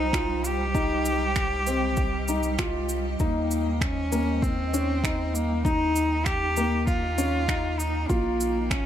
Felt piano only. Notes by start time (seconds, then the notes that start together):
0.14 F4
0.75 D#4
1.67 C4
2.29 D#4
2.58 F4
3.20 D#4
4.12 A#3
4.74 C#4
5.04 D#4
5.65 D#4
6.57 A#3
7.18 C#4
7.49 D#4
8.09 F4